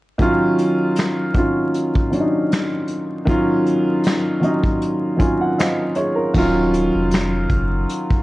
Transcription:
0.18 upright piano D#3 F#3 C#4 F4, kick, closed hi-hat
0.58 closed hi-hat
0.96 snare, closed hi-hat
1.00 finger snap
1.34 upright piano D#3 F#3 C#4 F4, kick, closed hi-hat
1.74 closed hi-hat
1.95 kick
2.10 upright piano D#3 F#3 C#4 D4, closed hi-hat
2.20 upright piano D#4
2.52 finger snap, snare, closed hi-hat
2.88 closed hi-hat
3.25 upright piano D#3 F#3 C#4 F4, kick, closed hi-hat
3.66 closed hi-hat
4.04 snare, closed hi-hat
4.08 finger snap
4.40 upright piano D#3 F#3 C#4 D#4, closed hi-hat
4.64 kick
4.82 closed hi-hat
5.16 upright piano D#3 F#3 C#4 F4 G#5, kick, closed hi-hat
5.41 upright piano F#5
5.58 upright piano C5 D#5 F5, finger snap, snare, closed hi-hat
5.95 upright piano G#4 C#5, closed hi-hat
6.15 upright piano F4 A#4
6.34 sub bass D#1, upright piano D#3 F#3 C#4 F4, kick, crash
6.74 closed hi-hat
6.95 sub bass F1
7.11 snare, closed hi-hat
7.15 finger snap
7.50 sub bass F#1, kick, closed hi-hat
7.89 closed hi-hat
8.10 kick

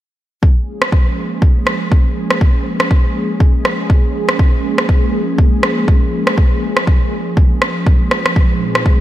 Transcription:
0.42 analog synth pad F3 G#3 A#3 C#4 G#4, kick
0.82 cross-stick
0.92 kick
1.42 kick
1.67 cross-stick
1.92 kick
2.31 cross-stick
2.41 kick
2.80 cross-stick
2.91 kick
3.40 kick
3.65 cross-stick
3.90 kick
4.29 cross-stick
4.39 kick
4.78 cross-stick
4.89 kick
5.38 kick
5.63 cross-stick
5.88 kick
6.27 cross-stick
6.38 kick
6.77 cross-stick
6.87 kick
7.37 kick
7.62 cross-stick
7.86 kick
8.11 cross-stick
8.26 cross-stick
8.36 analog synth pad A#2 G#3 C4 D#4 G#4, kick
8.75 cross-stick
8.86 kick

